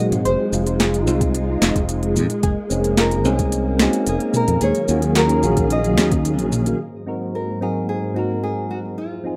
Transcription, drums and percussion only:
0.12 closed hi-hat soft
0.12 mid tom medium
0.12 shaker soft
0.25 closed hi-hat medium
0.25 shaker soft
0.53 shaker medium
0.67 closed hi-hat soft
0.67 shaker soft
0.80 snare medium
0.80 closed hi-hat medium
0.80 shaker soft
0.94 closed hi-hat soft
0.94 shaker soft
1.07 shaker medium
1.21 kick loud
1.21 closed hi-hat soft
1.21 shaker soft
1.35 closed hi-hat medium
1.35 shaker soft
1.62 snare medium
1.62 shaker medium
1.76 kick medium
1.76 closed hi-hat soft
1.76 shaker soft
1.89 closed hi-hat medium
1.89 shaker soft
2.03 closed hi-hat soft
2.16 mid tom medium
2.16 shaker medium
2.30 closed hi-hat soft
2.30 shaker soft
2.43 kick loud
2.43 closed hi-hat medium
2.43 shaker soft
2.71 shaker medium
2.84 closed hi-hat soft
2.84 shaker soft
2.97 snare medium
2.97 closed hi-hat medium
2.97 shaker soft
3.11 closed hi-hat soft
3.11 shaker soft
3.25 shaker medium
3.39 kick loud
3.39 closed hi-hat soft
3.39 shaker soft
3.52 closed hi-hat medium
3.52 shaker soft
3.79 snare medium
3.79 shaker medium
3.93 closed hi-hat soft
3.93 shaker soft
4.07 closed hi-hat medium
4.07 shaker soft
4.20 closed hi-hat soft
4.34 mid tom medium
4.34 shaker medium
4.48 closed hi-hat soft
4.48 mid tom medium
4.48 shaker soft
4.61 closed hi-hat medium
4.61 shaker soft
4.75 closed hi-hat soft
4.75 shaker soft
4.88 shaker medium
5.02 closed hi-hat soft
5.02 shaker soft
5.15 snare medium
5.15 closed hi-hat medium
5.15 shaker soft
5.29 closed hi-hat soft
5.29 shaker soft
5.43 shaker medium
5.57 kick loud
5.57 closed hi-hat soft
5.57 shaker soft
5.70 closed hi-hat medium
5.70 shaker soft
5.84 closed hi-hat soft
5.84 shaker soft
5.98 snare medium
5.98 shaker medium
6.12 kick loud
6.12 closed hi-hat soft
6.12 shaker soft
6.25 closed hi-hat medium
6.25 shaker soft
6.39 closed hi-hat soft
6.39 shaker soft
6.52 mid tom medium
6.52 shaker medium
6.66 closed hi-hat soft
6.66 shaker soft
7.07 shaker medium
7.21 shaker soft
8.71 shaker medium
8.84 shaker soft
8.98 shaker soft
9.25 shaker medium

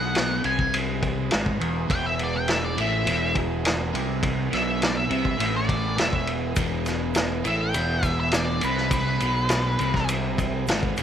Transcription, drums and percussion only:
0.15 snare loud
0.15 ride medium
0.44 ride medium
0.59 kick medium
0.74 ride medium
1.02 kick medium
1.02 ride medium
1.31 snare loud
1.31 ride medium
1.46 kick medium
1.61 ride medium
1.90 kick loud
1.90 ride medium
2.19 ride medium
2.48 snare loud
2.48 ride medium
2.78 ride medium
3.07 ride medium
3.35 kick medium
3.35 ride medium
3.65 snare loud
3.65 ride medium
3.95 ride medium
4.23 kick loud
4.23 ride medium
4.53 snare soft
4.53 ride medium
4.82 snare loud
4.82 ride medium
5.11 ride medium
5.25 kick medium
5.40 ride medium
5.69 kick medium
5.69 ride medium
5.98 snare loud
5.98 ride medium
6.13 kick medium
6.27 ride medium
6.56 kick loud
6.56 ride medium
6.56 shaker medium
6.86 snare soft
6.86 ride medium
6.86 shaker medium
7.15 snare loud
7.15 ride medium
7.15 shaker medium
7.45 ride medium
7.45 shaker medium
7.74 ride medium
7.74 shaker medium
8.03 kick medium
8.03 ride medium
8.03 shaker medium
8.31 snare loud
8.31 ride medium
8.31 shaker medium
8.61 ride medium
8.61 shaker medium
8.77 snare soft
8.91 kick loud
8.91 ride loud
8.91 shaker medium
9.20 ride medium
9.20 shaker medium
9.49 snare loud
9.49 ride medium
9.49 shaker medium
9.79 ride medium
9.79 shaker medium
9.94 kick medium
9.94 snare soft
10.09 ride loud
10.09 shaker medium
10.38 kick medium
10.38 ride medium
10.38 shaker medium
10.67 snare loud
10.67 ride medium
10.67 shaker medium
10.83 kick medium
10.97 ride medium
10.97 shaker medium

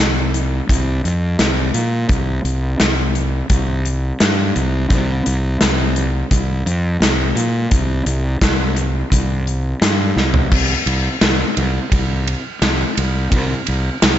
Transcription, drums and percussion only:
0.34 closed hi-hat medium
0.69 kick medium
0.69 closed hi-hat medium
1.05 closed hi-hat medium
1.39 snare medium
1.39 closed hi-hat medium
1.74 closed hi-hat medium
2.09 kick medium
2.09 closed hi-hat medium
2.45 closed hi-hat medium
2.80 snare medium
2.80 closed hi-hat medium
3.15 closed hi-hat medium
3.50 kick medium
3.50 closed hi-hat medium
3.85 closed hi-hat soft
4.20 snare medium
4.20 closed hi-hat medium
4.56 closed hi-hat medium
4.90 kick medium
4.90 closed hi-hat medium
5.26 closed hi-hat medium
5.61 snare loud
5.61 closed hi-hat medium
5.96 closed hi-hat medium
6.31 kick medium
6.31 closed hi-hat medium
6.67 closed hi-hat medium
7.02 snare loud
7.02 closed hi-hat medium
7.37 closed hi-hat medium
7.71 kick medium
7.71 closed hi-hat medium
8.06 closed hi-hat medium
8.41 kick medium
8.41 snare medium
8.41 closed hi-hat medium
8.76 closed hi-hat medium
9.12 kick medium
9.12 closed hi-hat medium
9.47 closed hi-hat soft
9.82 snare loud
9.82 closed hi-hat medium
10.17 snare soft
10.34 floor tom medium
10.52 kick medium
10.52 crash medium
10.87 ride medium
11.21 snare loud
11.21 ride medium
11.57 ride medium
11.92 kick medium
11.92 ride medium
12.27 ride medium
12.62 snare medium
12.62 ride medium
12.97 ride medium
13.32 kick medium
13.32 ride medium
13.67 ride medium
14.02 snare loud
14.02 ride loud

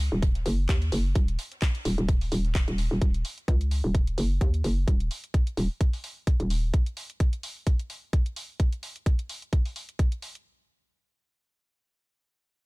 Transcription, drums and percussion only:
0.00 closed hi-hat medium
0.22 kick loud
0.22 closed hi-hat medium
0.35 snare soft
0.35 closed hi-hat soft
0.46 closed hi-hat medium
0.46 open hi-hat loud
0.69 kick loud
0.69 snare loud
0.69 clap loud
0.69 closed hi-hat medium
0.82 closed hi-hat soft
0.92 closed hi-hat medium
0.92 open hi-hat loud
1.15 kick loud
1.15 closed hi-hat medium
1.28 closed hi-hat soft
1.39 closed hi-hat medium
1.39 open hi-hat loud
1.52 snare soft
1.52 closed hi-hat soft
1.61 kick loud
1.61 snare loud
1.61 clap loud
1.61 closed hi-hat medium
1.75 closed hi-hat soft
1.85 closed hi-hat medium
1.85 open hi-hat loud
1.98 closed hi-hat soft
2.09 kick loud
2.09 closed hi-hat medium
2.21 closed hi-hat soft
2.21 open hi-hat medium
2.32 closed hi-hat medium
2.32 open hi-hat loud
2.45 snare soft
2.45 closed hi-hat soft
2.55 kick loud
2.55 snare loud
2.55 clap loud
2.55 closed hi-hat medium
2.68 snare soft
2.68 closed hi-hat soft
2.78 closed hi-hat medium
2.78 open hi-hat loud
2.91 snare soft
3.02 kick loud
3.02 closed hi-hat medium
3.14 closed hi-hat soft
3.25 open hi-hat medium
3.38 closed hi-hat soft
3.48 kick loud
3.48 closed hi-hat medium
3.61 closed hi-hat soft
3.71 open hi-hat loud
3.95 kick loud
3.95 closed hi-hat medium
4.07 closed hi-hat soft
4.18 open hi-hat medium
4.41 kick loud
4.41 closed hi-hat medium
4.54 closed hi-hat soft
4.64 open hi-hat loud
4.88 kick loud
4.88 closed hi-hat medium
5.00 closed hi-hat soft
5.11 open hi-hat medium
5.24 closed hi-hat soft
5.34 kick loud
5.34 closed hi-hat medium
5.47 closed hi-hat soft
5.57 open hi-hat medium
5.81 kick loud
5.81 closed hi-hat medium
5.93 open hi-hat medium
6.04 open hi-hat medium
6.27 kick loud
6.27 closed hi-hat medium
6.40 closed hi-hat soft
6.50 open hi-hat medium
6.74 kick loud
6.74 closed hi-hat medium
6.86 closed hi-hat soft
6.97 open hi-hat medium
7.10 closed hi-hat soft
7.20 kick loud
7.20 closed hi-hat medium
7.33 closed hi-hat medium
7.43 open hi-hat medium
7.67 kick loud
7.67 closed hi-hat medium
7.79 closed hi-hat soft
7.90 open hi-hat medium
8.13 kick loud
8.13 closed hi-hat medium
8.26 closed hi-hat soft
8.36 open hi-hat medium
8.60 kick loud
8.60 closed hi-hat medium
8.72 closed hi-hat soft
8.83 open hi-hat medium
8.96 closed hi-hat soft
9.06 kick loud
9.06 closed hi-hat medium
9.19 closed hi-hat soft
9.29 open hi-hat medium
9.42 closed hi-hat soft
9.53 kick loud
9.53 closed hi-hat medium
9.65 open hi-hat medium
9.76 open hi-hat medium
9.89 closed hi-hat soft
9.99 kick loud
9.99 closed hi-hat medium
10.12 closed hi-hat soft
10.22 open hi-hat medium
10.35 closed hi-hat soft

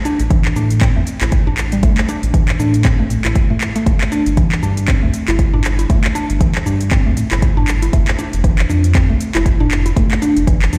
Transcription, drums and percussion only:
0.05 closed hi-hat soft
0.05 shaker medium
0.20 closed hi-hat soft
0.20 shaker medium
0.30 kick loud
0.30 closed hi-hat medium
0.30 shaker soft
0.45 clap medium
0.56 shaker medium
0.70 closed hi-hat soft
0.70 shaker medium
0.81 kick loud
0.81 clap loud
0.81 closed hi-hat medium
0.81 shaker soft
1.07 closed hi-hat soft
1.07 shaker loud
1.21 clap medium
1.21 closed hi-hat soft
1.21 shaker medium
1.32 kick loud
1.32 closed hi-hat medium
1.32 shaker soft
1.47 mid tom medium
1.58 clap medium
1.58 shaker medium
1.72 closed hi-hat soft
1.72 shaker medium
1.83 kick loud
1.83 closed hi-hat medium
1.83 mid tom medium
1.83 shaker soft
1.98 clap medium
2.09 closed hi-hat soft
2.09 shaker medium
2.23 closed hi-hat soft
2.23 shaker medium
2.34 kick loud
2.34 closed hi-hat medium
2.34 shaker soft
2.49 clap medium
2.60 shaker medium
2.74 closed hi-hat soft
2.74 shaker medium
2.85 kick loud
2.85 clap medium
2.85 closed hi-hat medium
2.85 shaker soft
3.10 closed hi-hat soft
3.10 mid tom medium
3.10 shaker medium
3.25 clap medium
3.25 closed hi-hat soft
3.25 shaker medium
3.35 kick loud
3.35 closed hi-hat medium
3.35 shaker soft
3.50 mid tom medium
3.61 clap medium
3.61 shaker medium
3.76 closed hi-hat soft
3.76 shaker medium
3.86 kick loud
3.86 closed hi-hat medium
3.86 mid tom medium
3.86 shaker soft
4.01 clap medium
4.12 closed hi-hat soft
4.12 shaker medium
4.26 closed hi-hat soft
4.26 shaker soft
4.37 kick loud
4.37 closed hi-hat medium
4.37 shaker soft
4.52 clap medium
4.63 shaker medium
4.77 closed hi-hat soft
4.77 shaker medium
4.88 kick loud
4.88 clap medium
4.88 closed hi-hat medium
4.88 shaker soft
5.14 closed hi-hat soft
5.14 shaker medium
5.28 clap medium
5.28 closed hi-hat soft
5.28 shaker medium
5.39 kick loud
5.39 closed hi-hat medium
5.39 shaker soft
5.54 mid tom medium
5.64 clap medium
5.64 shaker medium
5.79 closed hi-hat soft
5.79 shaker soft
5.90 kick loud
5.90 closed hi-hat medium
5.90 mid tom medium
5.90 shaker soft
6.04 clap medium
6.15 closed hi-hat soft
6.15 shaker medium
6.30 closed hi-hat soft
6.30 shaker soft
6.41 kick loud
6.41 closed hi-hat medium
6.41 shaker soft
6.55 clap medium
6.66 shaker medium
6.81 closed hi-hat soft
6.81 shaker medium
6.91 kick loud
6.91 clap medium
6.91 closed hi-hat medium
6.91 shaker soft
7.17 closed hi-hat medium
7.17 mid tom loud
7.17 shaker medium
7.31 clap medium
7.31 closed hi-hat soft
7.31 shaker medium
7.42 kick loud
7.42 closed hi-hat medium
7.42 shaker soft
7.57 mid tom loud
7.68 clap medium
7.68 shaker medium
7.82 closed hi-hat soft
7.82 shaker soft
7.93 kick loud
7.93 closed hi-hat medium
7.93 mid tom medium
7.93 shaker soft
8.08 clap medium
8.19 closed hi-hat soft
8.19 shaker medium
8.33 closed hi-hat soft
8.33 shaker soft
8.44 kick loud
8.44 closed hi-hat medium
8.44 shaker soft
8.59 clap medium
8.70 shaker medium
8.84 closed hi-hat soft
8.84 shaker soft
8.95 kick loud
8.95 clap medium
8.95 closed hi-hat medium
8.95 shaker soft
9.21 closed hi-hat medium
9.21 shaker medium
9.35 clap medium
9.35 closed hi-hat soft
9.35 shaker medium
9.46 kick loud
9.46 closed hi-hat medium
9.46 shaker soft
9.60 mid tom loud
9.71 clap medium
9.71 shaker medium
9.86 closed hi-hat soft
9.86 shaker soft
9.96 kick loud
9.96 closed hi-hat medium
9.96 mid tom medium
9.96 shaker soft
10.11 clap loud
10.22 closed hi-hat soft
10.22 shaker medium
10.37 closed hi-hat soft
10.37 shaker soft
10.47 kick loud
10.47 closed hi-hat medium
10.47 shaker soft
10.62 clap medium
10.73 closed hi-hat soft
10.73 shaker medium

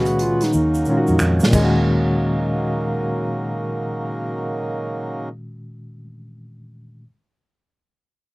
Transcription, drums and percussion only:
0.05 closed hi-hat soft
0.05 shaker soft
0.19 closed hi-hat medium
0.41 snare soft
0.41 closed hi-hat medium
0.41 shaker soft
0.53 shaker medium
0.74 shaker soft
0.85 shaker soft
1.07 shaker soft
1.19 finger snap medium
1.19 shaker medium
1.40 snare medium
1.40 shaker medium
1.53 kick loud
1.53 crash medium
1.53 shaker medium

